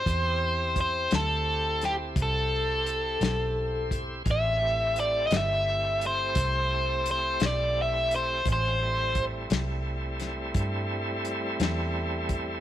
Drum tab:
HH |x-xx-xx-xx-x|x-xx-xx-xx-x|x-xx-xx-xx-x|
SD |---o-o---o--|---o-----o--|---o-o---o--|
BD |o-o---o----o|o-----o-----|o-o---o----o|